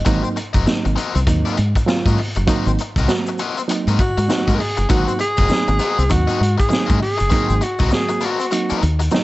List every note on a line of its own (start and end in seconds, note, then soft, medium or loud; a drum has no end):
0.05 0.21 G#1 loud
0.05 0.38 F#3 loud
0.05 0.38 A#3 medium
0.05 0.27 C4 medium
0.05 0.38 C4 loud
0.05 0.38 D#4 loud
0.05 0.23 F#4 medium
0.05 0.23 A#4 medium
0.05 0.22 D#5 medium
0.05 kick loud
0.05 closed hi-hat loud
0.05 shaker medium
0.24 muted overdriven electric guitar stroke medium
0.24 shaker medium
0.36 muted overdriven electric guitar stroke soft
0.36 closed hi-hat medium
0.36 shaker medium
0.53 0.65 F#1 loud
0.53 0.65 C4 medium
0.53 0.66 F#4 soft
0.53 0.66 A#4 medium
0.53 0.66 D#5 medium
0.53 kick medium
0.53 closed hi-hat medium
0.53 shaker soft
0.66 0.98 F#3 medium
0.66 0.98 A#3 medium
0.66 0.99 C4 medium
0.66 0.98 D#4 medium
0.66 muted overdriven electric guitar stroke soft
0.66 snare loud
0.66 shaker medium
0.85 0.95 G#1 medium
0.85 muted overdriven electric guitar stroke soft
0.85 closed hi-hat soft
0.85 shaker medium
0.96 1.18 C4 medium
0.96 1.15 F#4 medium
0.96 1.15 A#4 medium
0.96 1.14 D#5 medium
0.96 closed hi-hat medium
0.96 shaker medium
1.15 1.25 C2 loud
1.15 muted overdriven electric guitar stroke medium
1.15 closed hi-hat medium
1.15 shaker soft
1.27 1.42 D#2 medium
1.27 1.59 F#3 medium
1.27 1.59 A#3 medium
1.27 1.59 C4 medium
1.27 1.59 D#4 medium
1.27 muted overdriven electric guitar stroke soft
1.27 kick loud
1.27 closed hi-hat loud
1.27 shaker medium
1.45 1.56 C4 medium
1.45 1.56 F#4 medium
1.45 1.56 A#4 medium
1.45 1.57 D#5 medium
1.45 closed hi-hat soft
1.45 shaker medium
1.57 1.73 G#2 loud
1.57 muted overdriven electric guitar stroke soft
1.57 closed hi-hat medium
1.75 muted overdriven electric guitar stroke soft
1.75 kick medium
1.75 closed hi-hat medium
1.75 shaker medium
1.87 2.19 F#3 loud
1.87 2.19 A#3 medium
1.87 2.19 C4 medium
1.87 2.19 F4 loud
1.87 muted overdriven electric guitar stroke medium
1.87 snare loud
1.87 shaker medium
2.05 2.16 G#2 medium
2.05 2.18 C4 medium
2.05 2.18 F#4 medium
2.05 2.18 A#4 medium
2.05 2.19 D#5 medium
2.05 kick medium
2.05 closed hi-hat soft
2.05 shaker medium
2.18 muted overdriven electric guitar stroke soft
2.18 open hi-hat medium
2.35 2.46 F#1 medium
2.35 muted overdriven electric guitar stroke soft
2.35 closed hi-hat medium
2.35 shaker medium
2.47 2.79 F#3 loud
2.47 2.79 A#3 medium
2.47 2.79 C4 medium
2.47 2.70 C4 medium
2.47 2.79 D#4 loud
2.47 2.67 F#4 medium
2.47 2.67 A#4 medium
2.47 2.66 D#5 loud
2.47 kick loud
2.47 closed hi-hat loud
2.47 shaker medium
2.65 2.76 G#1 medium
2.65 muted overdriven electric guitar stroke medium
2.65 closed hi-hat soft
2.65 shaker medium
2.78 muted overdriven electric guitar stroke soft
2.78 closed hi-hat medium
2.78 shaker medium
2.96 3.06 C2 medium
2.96 3.09 C4 medium
2.96 3.09 F#4 medium
2.96 3.09 A#4 medium
2.96 3.09 D#5 medium
2.96 kick medium
2.96 snare soft
2.96 closed hi-hat medium
2.96 shaker medium
3.08 3.40 F#3 medium
3.08 3.40 A#3 medium
3.08 3.40 C4 medium
3.08 3.40 F#4 loud
3.08 muted overdriven electric guitar stroke soft
3.08 snare medium
3.08 shaker medium
3.26 muted overdriven electric guitar stroke soft
3.26 closed hi-hat soft
3.26 shaker medium
3.38 3.60 C4 medium
3.38 3.58 F#4 medium
3.38 3.57 A#4 medium
3.38 3.57 D#5 medium
3.38 closed hi-hat medium
3.38 shaker medium
3.57 muted overdriven electric guitar stroke medium
3.57 closed hi-hat soft
3.57 shaker medium
3.68 4.00 F#3 medium
3.68 4.00 A#3 medium
3.68 4.00 C4 medium
3.68 4.00 D#4 medium
3.68 muted overdriven electric guitar stroke soft
3.68 closed hi-hat loud
3.68 shaker medium
3.87 3.97 G#2 medium
3.87 3.99 C4 medium
3.87 3.99 F#4 medium
3.87 4.00 A#4 medium
3.87 4.00 D#5 medium
3.87 closed hi-hat soft
3.87 shaker medium
3.99 4.56 F#4 medium
3.99 muted overdriven electric guitar stroke soft
3.99 kick medium
3.99 closed hi-hat medium
4.17 4.27 G#2 loud
4.17 muted overdriven electric guitar stroke soft
4.17 closed hi-hat medium
4.17 shaker medium
4.28 4.60 F#3 medium
4.28 4.60 A#3 medium
4.28 4.61 C4 medium
4.28 4.61 D#4 medium
4.28 muted overdriven electric guitar stroke soft
4.28 snare loud
4.28 shaker medium
4.48 4.58 G#2 medium
4.48 4.59 C4 medium
4.48 4.59 F#4 medium
4.48 4.59 A#4 medium
4.48 4.59 D#5 medium
4.48 kick medium
4.48 closed hi-hat soft
4.48 shaker medium
4.55 4.61 B4 medium
4.59 4.90 G#4 medium
4.59 muted overdriven electric guitar stroke soft
4.59 open hi-hat medium
4.77 4.88 F#1 medium
4.77 muted overdriven electric guitar stroke medium
4.77 closed hi-hat medium
4.77 shaker soft
4.89 5.05 G#1 medium
4.89 5.21 F#3 medium
4.89 5.21 A#3 medium
4.89 5.11 C4 medium
4.89 5.21 C4 medium
4.89 5.21 D#4 medium
4.89 5.07 F#4 medium
4.89 5.18 F#4 medium
4.89 5.07 A#4 medium
4.89 5.07 D#5 medium
4.89 kick loud
4.89 closed hi-hat loud
4.89 shaker medium
5.08 muted overdriven electric guitar stroke soft
5.08 closed hi-hat soft
5.08 shaker medium
5.19 6.13 G#4 loud
5.19 muted overdriven electric guitar stroke soft
5.19 closed hi-hat medium
5.19 shaker medium
5.37 5.48 F#1 medium
5.37 5.48 C4 soft
5.37 5.48 F#4 soft
5.37 5.49 A#4 medium
5.37 5.49 D#5 medium
5.37 kick loud
5.37 snare soft
5.37 closed hi-hat medium
5.37 shaker medium
5.49 5.81 F#3 medium
5.49 5.81 A#3 medium
5.49 5.81 C4 medium
5.49 5.81 D#4 medium
5.49 muted overdriven electric guitar stroke soft
5.49 snare loud
5.49 shaker medium
5.68 5.78 G#1 loud
5.68 muted overdriven electric guitar stroke soft
5.68 closed hi-hat soft
5.68 shaker soft
5.79 6.01 C4 medium
5.79 5.98 F#4 medium
5.79 5.98 A#4 medium
5.79 5.97 D#5 medium
5.79 closed hi-hat medium
5.79 shaker medium
5.98 6.08 C2 medium
5.98 muted overdriven electric guitar stroke medium
5.98 closed hi-hat soft
5.98 shaker medium
6.10 6.26 D#2 medium
6.10 6.42 F#3 medium
6.10 6.42 A#3 medium
6.10 6.42 C4 medium
6.10 6.42 D#4 medium
6.10 6.59 F#4 medium
6.10 muted overdriven electric guitar stroke soft
6.10 kick medium
6.10 closed hi-hat loud
6.10 shaker medium
6.27 6.39 C4 medium
6.27 6.39 F#4 medium
6.27 6.40 A#4 medium
6.27 6.40 D#5 medium
6.27 closed hi-hat soft
6.27 shaker medium
6.40 6.56 G#2 medium
6.40 muted overdriven electric guitar stroke soft
6.40 closed hi-hat medium
6.58 6.99 G#4 medium
6.58 muted overdriven electric guitar stroke soft
6.58 kick medium
6.58 closed hi-hat medium
6.58 shaker medium
6.69 7.02 F#3 medium
6.69 7.02 A#3 medium
6.69 7.02 C4 medium
6.69 7.02 D#4 medium
6.69 muted overdriven electric guitar stroke soft
6.69 shaker medium
6.73 snare loud
6.86 7.00 G#2 loud
6.86 6.98 C4 medium
6.86 6.98 F#4 medium
6.86 6.98 A#4 medium
6.86 6.99 D#5 medium
6.86 kick loud
6.86 shaker medium
6.91 closed hi-hat soft
6.99 7.65 G#4 loud
6.99 muted overdriven electric guitar stroke soft
6.99 open hi-hat medium
7.17 7.30 F#1 medium
7.17 muted overdriven electric guitar stroke soft
7.17 closed hi-hat medium
7.17 shaker medium
7.30 7.63 F#3 medium
7.30 7.63 A#3 medium
7.30 7.52 C4 loud
7.30 7.63 C4 medium
7.30 7.63 D#4 medium
7.30 7.49 F#4 medium
7.30 7.48 A#4 loud
7.30 7.47 D#5 loud
7.30 kick loud
7.30 closed hi-hat loud
7.30 shaker medium
7.49 7.60 G#1 loud
7.49 muted overdriven electric guitar stroke soft
7.49 closed hi-hat soft
7.49 shaker medium
7.61 7.95 F#4 medium
7.61 muted overdriven electric guitar stroke soft
7.61 closed hi-hat medium
7.61 shaker medium
7.79 7.90 C2 medium
7.79 7.90 C4 medium
7.79 7.90 F#4 medium
7.79 7.90 A#4 medium
7.79 7.91 D#5 medium
7.79 kick medium
7.79 snare soft
7.79 closed hi-hat medium
7.79 shaker medium
7.91 8.23 F#3 medium
7.91 8.23 A#3 medium
7.91 8.23 C4 medium
7.91 8.23 F#4 medium
7.91 8.27 G#4 loud
7.91 muted overdriven electric guitar stroke soft
7.91 snare medium
7.91 shaker medium
8.09 muted overdriven electric guitar stroke soft
8.09 closed hi-hat soft
8.09 shaker medium
8.21 8.44 C4 medium
8.21 8.39 F#4 medium
8.21 8.39 A#4 medium
8.21 8.38 D#5 loud
8.21 closed hi-hat medium
8.21 shaker medium
8.25 8.84 F#4 medium
8.39 muted overdriven electric guitar stroke soft
8.39 closed hi-hat medium
8.39 shaker medium
8.51 8.84 F#3 medium
8.51 8.84 A#3 medium
8.51 8.84 C4 medium
8.51 8.84 D#4 medium
8.51 muted overdriven electric guitar stroke soft
8.51 closed hi-hat loud
8.51 shaker medium
8.69 8.81 C4 medium
8.69 8.81 F#4 medium
8.69 8.82 A#4 medium
8.69 8.81 D#5 medium
8.69 muted fingered electric bass stroke soft
8.69 closed hi-hat soft
8.69 shaker soft
8.82 9.08 D#2 loud
8.82 muted overdriven electric guitar stroke soft
8.82 closed hi-hat medium
8.99 muted overdriven electric guitar stroke soft
8.99 closed hi-hat medium
8.99 shaker medium
9.11 9.24 F#3 loud
9.11 9.24 A#3 medium
9.11 9.24 C4 medium
9.11 9.24 D#4 loud
9.11 muted overdriven electric guitar stroke soft
9.11 snare loud
9.11 shaker medium